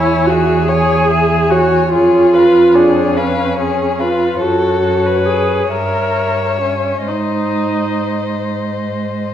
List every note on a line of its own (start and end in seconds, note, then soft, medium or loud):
0.00 1.94 E2 medium
0.00 0.27 E4 medium
0.00 0.31 C#5 soft
0.00 0.32 G#5 soft
0.26 0.67 F#4 medium
0.26 0.70 G#4 soft
0.30 0.70 E5 soft
0.68 1.52 G#4 medium
0.68 1.10 C#5 soft
0.68 1.10 G#5 soft
1.10 1.52 G#4 soft
1.10 1.54 E5 soft
1.50 1.91 F#4 medium
1.50 1.92 C#5 soft
1.50 1.93 G#5 soft
1.92 4.42 F2 medium
1.92 2.76 F4 medium
1.92 2.35 G#4 soft
1.92 2.37 C#5 soft
2.34 2.76 B4 soft
2.34 2.76 F5 soft
2.75 3.17 D4 medium
2.75 3.19 G#4 soft
2.75 3.18 C#5 soft
3.16 4.01 C#4 medium
3.16 3.58 B4 soft
3.16 3.57 F5 soft
3.58 4.01 G#4 soft
3.58 4.00 C#5 soft
3.99 4.43 F4 medium
3.99 4.41 B4 soft
3.99 4.39 F5 soft
4.40 5.67 F#2 soft
4.40 5.27 F#4 medium
4.40 5.08 A4 soft
4.40 5.70 C#5 medium
5.07 5.70 B4 soft
5.26 5.72 G#4 medium
5.69 7.05 G2 soft
5.69 6.60 A#4 medium
5.69 7.05 C#5 soft
5.69 7.07 E5 soft
6.61 7.09 C#4 soft
7.07 9.34 G#2 soft
7.07 8.54 D#4 soft
7.07 9.34 C5 soft
7.07 9.34 D#5 soft